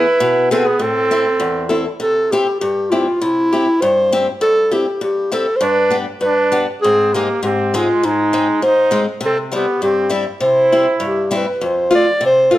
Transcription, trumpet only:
0, 0, Header, 1, 2, 480
1, 0, Start_track
1, 0, Key_signature, 0, "major"
1, 0, Tempo, 600601
1, 647, Time_signature, 2, 2, 24, 8
1, 10056, End_track
2, 0, Start_track
2, 0, Title_t, "Trumpet"
2, 0, Program_c, 0, 56
2, 0, Note_on_c, 0, 64, 89
2, 404, Note_off_c, 0, 64, 0
2, 408, Note_on_c, 0, 60, 72
2, 533, Note_on_c, 0, 59, 68
2, 545, Note_off_c, 0, 60, 0
2, 657, Note_on_c, 0, 60, 80
2, 669, Note_off_c, 0, 59, 0
2, 1384, Note_off_c, 0, 60, 0
2, 4491, Note_on_c, 0, 62, 89
2, 4761, Note_off_c, 0, 62, 0
2, 4992, Note_on_c, 0, 62, 82
2, 5319, Note_off_c, 0, 62, 0
2, 5461, Note_on_c, 0, 60, 67
2, 5703, Note_on_c, 0, 58, 74
2, 5715, Note_off_c, 0, 60, 0
2, 5935, Note_off_c, 0, 58, 0
2, 5947, Note_on_c, 0, 60, 65
2, 6195, Note_on_c, 0, 56, 66
2, 6207, Note_off_c, 0, 60, 0
2, 6441, Note_off_c, 0, 56, 0
2, 6441, Note_on_c, 0, 56, 77
2, 6904, Note_off_c, 0, 56, 0
2, 6915, Note_on_c, 0, 63, 73
2, 7237, Note_off_c, 0, 63, 0
2, 7387, Note_on_c, 0, 60, 62
2, 7491, Note_off_c, 0, 60, 0
2, 7633, Note_on_c, 0, 59, 62
2, 7836, Note_off_c, 0, 59, 0
2, 7861, Note_on_c, 0, 60, 64
2, 8101, Note_off_c, 0, 60, 0
2, 8341, Note_on_c, 0, 64, 71
2, 9027, Note_off_c, 0, 64, 0
2, 10056, End_track
0, 0, End_of_file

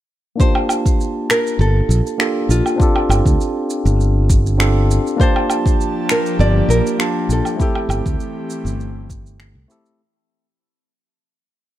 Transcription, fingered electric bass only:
0, 0, Header, 1, 2, 480
1, 0, Start_track
1, 0, Tempo, 600000
1, 318, Time_signature, 4, 2, 24, 8
1, 9425, End_track
2, 0, Start_track
2, 0, Title_t, "Fingered electric bass"
2, 0, Program_c, 0, 33
2, 1272, Note_on_c, 0, 31, 92
2, 1442, Note_off_c, 0, 31, 0
2, 1512, Note_on_c, 0, 34, 93
2, 1601, Note_off_c, 0, 34, 0
2, 1992, Note_on_c, 0, 34, 74
2, 2081, Note_off_c, 0, 34, 0
2, 2474, Note_on_c, 0, 31, 89
2, 2563, Note_off_c, 0, 31, 0
2, 2602, Note_on_c, 0, 38, 88
2, 2680, Note_off_c, 0, 38, 0
2, 3083, Note_on_c, 0, 31, 85
2, 3978, Note_off_c, 0, 31, 0
2, 5114, Note_on_c, 0, 31, 91
2, 5283, Note_off_c, 0, 31, 0
2, 5349, Note_on_c, 0, 34, 92
2, 5440, Note_off_c, 0, 34, 0
2, 5833, Note_on_c, 0, 34, 76
2, 5922, Note_off_c, 0, 34, 0
2, 6310, Note_on_c, 0, 31, 90
2, 6401, Note_off_c, 0, 31, 0
2, 6447, Note_on_c, 0, 38, 87
2, 6522, Note_off_c, 0, 38, 0
2, 6918, Note_on_c, 0, 31, 86
2, 7636, Note_off_c, 0, 31, 0
2, 7641, Note_on_c, 0, 36, 78
2, 7719, Note_off_c, 0, 36, 0
2, 9425, End_track
0, 0, End_of_file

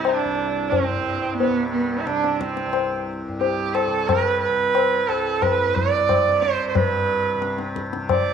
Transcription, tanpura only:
0, 0, Header, 1, 2, 480
1, 0, Start_track
1, 0, Tempo, 669643
1, 999, Time_signature, 4, 2, 24, 8
1, 5975, End_track
2, 0, Start_track
2, 0, Title_t, "Tanpura"
2, 0, Program_c, 0, 104
2, 0, Note_on_c, 0, 36, 55
2, 0, Note_on_c, 0, 43, 58
2, 0, Note_on_c, 0, 48, 55
2, 168, Note_off_c, 0, 36, 0
2, 171, Note_on_c, 0, 36, 58
2, 607, Note_off_c, 0, 43, 0
2, 609, Note_on_c, 0, 43, 56
2, 1045, Note_off_c, 0, 48, 0
2, 1045, Note_on_c, 0, 48, 60
2, 1477, Note_off_c, 0, 48, 0
2, 1477, Note_on_c, 0, 48, 60
2, 1906, Note_off_c, 0, 36, 0
2, 1909, Note_on_c, 0, 36, 59
2, 2347, Note_off_c, 0, 43, 0
2, 2350, Note_on_c, 0, 43, 57
2, 2775, Note_off_c, 0, 48, 0
2, 2775, Note_on_c, 0, 48, 54
2, 3210, Note_off_c, 0, 48, 0
2, 3210, Note_on_c, 0, 48, 57
2, 3637, Note_off_c, 0, 36, 0
2, 3640, Note_on_c, 0, 36, 54
2, 4063, Note_off_c, 0, 43, 0
2, 4066, Note_on_c, 0, 43, 59
2, 4496, Note_off_c, 0, 48, 0
2, 4496, Note_on_c, 0, 48, 66
2, 4839, Note_off_c, 0, 43, 0
2, 4839, Note_on_c, 0, 43, 58
2, 5259, Note_off_c, 0, 48, 0
2, 5259, Note_on_c, 0, 48, 57
2, 5701, Note_off_c, 0, 48, 0
2, 5701, Note_on_c, 0, 48, 57
2, 5975, Note_off_c, 0, 36, 0
2, 5975, Note_off_c, 0, 43, 0
2, 5975, Note_off_c, 0, 48, 0
2, 5975, End_track
0, 0, End_of_file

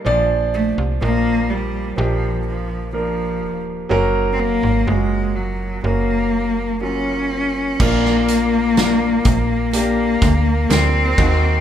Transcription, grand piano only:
0, 0, Header, 1, 2, 480
1, 0, Start_track
1, 0, Tempo, 966184
1, 29, Time_signature, 4, 2, 24, 8
1, 5765, End_track
2, 0, Start_track
2, 0, Title_t, "Grand piano"
2, 0, Program_c, 0, 0
2, 0, Control_c, 0, 64, 127
2, 23, Note_on_c, 0, 53, 83
2, 26, Note_on_c, 0, 46, 59
2, 28, Note_on_c, 0, 62, 82
2, 31, Note_on_c, 0, 74, 105
2, 35, Control_c, 0, 64, 0
2, 117, Control_c, 0, 64, 127
2, 479, Note_off_c, 0, 53, 0
2, 482, Note_off_c, 0, 62, 0
2, 483, Note_off_c, 0, 74, 0
2, 499, Note_on_c, 0, 53, 58
2, 503, Note_on_c, 0, 58, 49
2, 505, Note_on_c, 0, 62, 50
2, 508, Note_on_c, 0, 65, 71
2, 723, Note_off_c, 0, 46, 0
2, 955, Note_off_c, 0, 53, 0
2, 957, Note_off_c, 0, 58, 0
2, 958, Note_off_c, 0, 62, 0
2, 960, Note_off_c, 0, 65, 0
2, 975, Note_on_c, 0, 53, 65
2, 978, Note_on_c, 0, 58, 55
2, 980, Note_on_c, 0, 62, 58
2, 984, Note_on_c, 0, 67, 72
2, 1434, Note_off_c, 0, 53, 0
2, 1435, Note_off_c, 0, 58, 0
2, 1436, Note_off_c, 0, 62, 0
2, 1438, Note_off_c, 0, 67, 0
2, 1454, Note_on_c, 0, 53, 56
2, 1457, Note_on_c, 0, 58, 54
2, 1460, Note_on_c, 0, 62, 51
2, 1462, Note_on_c, 0, 70, 68
2, 1914, Note_off_c, 0, 53, 0
2, 1915, Note_off_c, 0, 58, 0
2, 1917, Note_off_c, 0, 62, 0
2, 1918, Note_off_c, 0, 70, 0
2, 1934, Note_on_c, 0, 54, 103
2, 1937, Note_on_c, 0, 58, 82
2, 1939, Note_on_c, 0, 61, 88
2, 1944, Note_on_c, 0, 70, 114
2, 1948, Control_c, 0, 64, 0
2, 2041, Control_c, 0, 64, 127
2, 2393, Note_off_c, 0, 54, 0
2, 2395, Note_off_c, 0, 58, 0
2, 2396, Note_off_c, 0, 61, 0
2, 2398, Note_off_c, 0, 70, 0
2, 2417, Note_on_c, 0, 54, 53
2, 2419, Note_on_c, 0, 58, 51
2, 2423, Note_on_c, 0, 61, 49
2, 2424, Note_on_c, 0, 65, 47
2, 2455, Note_off_c, 0, 65, 0
2, 2458, Note_on_c, 0, 66, 62
2, 2876, Note_off_c, 0, 54, 0
2, 2877, Note_off_c, 0, 58, 0
2, 2879, Note_off_c, 0, 61, 0
2, 2896, Note_off_c, 0, 66, 0
2, 2897, Note_on_c, 0, 54, 56
2, 2899, Note_on_c, 0, 58, 58
2, 2902, Note_on_c, 0, 61, 49
2, 2906, Note_on_c, 0, 70, 63
2, 3361, Note_off_c, 0, 54, 0
2, 3363, Note_off_c, 0, 58, 0
2, 3364, Note_off_c, 0, 61, 0
2, 3366, Note_off_c, 0, 70, 0
2, 3384, Note_on_c, 0, 54, 56
2, 3386, Note_on_c, 0, 58, 51
2, 3389, Note_on_c, 0, 61, 43
2, 3392, Note_on_c, 0, 65, 67
2, 3849, Note_off_c, 0, 54, 0
2, 3850, Note_off_c, 0, 58, 0
2, 3851, Note_off_c, 0, 61, 0
2, 3853, Note_off_c, 0, 65, 0
2, 3874, Note_on_c, 0, 58, 103
2, 3877, Note_on_c, 0, 46, 63
2, 3878, Note_on_c, 0, 62, 84
2, 3881, Control_c, 0, 64, 0
2, 3881, Note_on_c, 0, 65, 109
2, 3968, Control_c, 0, 64, 127
2, 4331, Note_off_c, 0, 58, 0
2, 4333, Note_off_c, 0, 62, 0
2, 4335, Note_off_c, 0, 65, 0
2, 4355, Note_on_c, 0, 58, 69
2, 4359, Note_on_c, 0, 62, 64
2, 4364, Note_on_c, 0, 65, 71
2, 4577, Note_off_c, 0, 46, 0
2, 4812, Note_off_c, 0, 58, 0
2, 4814, Note_off_c, 0, 62, 0
2, 4816, Note_off_c, 0, 65, 0
2, 4834, Note_on_c, 0, 58, 75
2, 4838, Note_on_c, 0, 62, 73
2, 4841, Note_on_c, 0, 67, 77
2, 5291, Note_off_c, 0, 58, 0
2, 5293, Note_off_c, 0, 62, 0
2, 5295, Note_off_c, 0, 67, 0
2, 5313, Note_on_c, 0, 58, 77
2, 5318, Note_on_c, 0, 62, 62
2, 5322, Note_on_c, 0, 65, 77
2, 5545, Note_off_c, 0, 58, 0
2, 5553, Note_on_c, 0, 58, 81
2, 5555, Note_off_c, 0, 62, 0
2, 5556, Note_on_c, 0, 51, 67
2, 5556, Note_on_c, 0, 63, 72
2, 5557, Note_off_c, 0, 65, 0
2, 5560, Control_c, 0, 64, 0
2, 5561, Note_on_c, 0, 66, 85
2, 5660, Control_c, 0, 64, 127
2, 5765, Note_off_c, 0, 51, 0
2, 5765, Note_off_c, 0, 58, 0
2, 5765, Note_off_c, 0, 63, 0
2, 5765, Note_off_c, 0, 66, 0
2, 5765, End_track
0, 0, End_of_file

